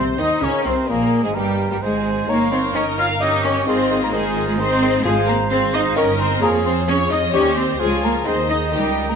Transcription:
Already playing: C2 G#2 C3 C4 C5
0.18 D#2 D#3 D#4 D#5 D#6
0.41 C#2 C#3 C#4 A#4 C#5 C#6
0.64 C2 C3 C4 C5 C6
0.87 A#1 A#2 A#3 G#4 A#4 A#5
1.23 G#1 G#2 G#3 G#4 G#5
1.35 G1 G2 G3 G4 A#4 G5
1.69 G1 G2 G3 G4 G5
1.82 G#1 G#2 G#3 G#4 C5 G#5
2.28 G1 D#3 A#3 D#4 A#4 C#5 F5 A#5
2.51 D#3 C4 C5 C#5 C6
2.74 D#3 C#4 A#4 C#5 D#5 C#6
2.98 D#3 F4 C#5 F5 F6
3.20 D#3 C#4 D#4 G4 C#5 D#5 D#6
3.44 D#3 C#4 C#5 C#6
3.67 G#1 D#3 C4 D#4 F4 G#4 C5 D#5 C6
3.90 D#3 G#4
4.02 A#3 A#4 A#5
4.12 D#3 G#3 D#4 F4 G#4 C5 G#5
4.36 D#3 G#4
4.47 G#3 G#4 G#5
4.58 D#3 C4 D#4 G#4 C5 D#5 C6
4.83 D#3 G#4
5.04 G#1 G#2 F3 G#3 F4 G#4 C5 F5 G#5
5.27 A#3 A#4 A#5
5.50 C4 G#4 C5 F5 C6
5.73 D#4 D#5 D#6
5.96 G1 D#3 C#4 D#4 A#4 C#5 D#5 C#6
6.19 C4 C5 C6
6.41 F2 F3 A#3 F4 G#4 A#4 C#5 A#5
6.64 C4 C5 C6
6.87 C#4 F4 G#4 C#5 C#6
7.11 D#4 D#5 D#6
7.33 D#2 G3 C#4 D#4 G4 C5 C#5 D#5 C#6
7.57 C4 C5 C6
7.79 C#2 F3 G#3 F4 G#4 C#5 G#5
8.03 A#3 A#4 A#5
8.26 D#2 D#3 C4 D#4 G#4 C5 D#5 C6
8.49 D#4 D#5 D#6
8.72 C#2 D#3 G3 D#4 G4 A#4 D#5 G5
9.09 A#3 A#4 A#5

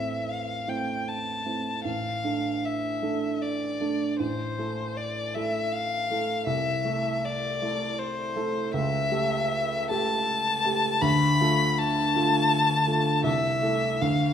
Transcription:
Already playing: A1 A3 C4 E4 E5
0.29 F5
0.68 A3 C4 E4 G5
1.08 A5
1.46 A3 C4 E4
1.85 A1 F5
2.24 A3 D4 A4
2.65 E5
3.02 A3 D4 A4
3.41 D5
3.81 A3 D4 A4
4.19 A1 C5
4.59 A3 E4 A4
4.97 D5
5.34 A3 E4 A4 E5
5.72 F5
6.10 A3 E4 A4
6.46 C2 E5
6.85 A3 E4 A4
7.24 D5
7.62 A3 E4 A4
7.99 C5
8.36 A3 E4 A4
8.74 C#2 E5
9.11 A3 G4 A4
9.90 A3 G4 A4 A5
10.65 A3 G4 A4
11.01 D2 B5
11.41 A3 F4 A4
11.78 A5
12.15 A3 F4 A4
12.87 A3 F4 A4
13.24 C2 E5
13.62 A3 E4 A4
14.01 D2 F5

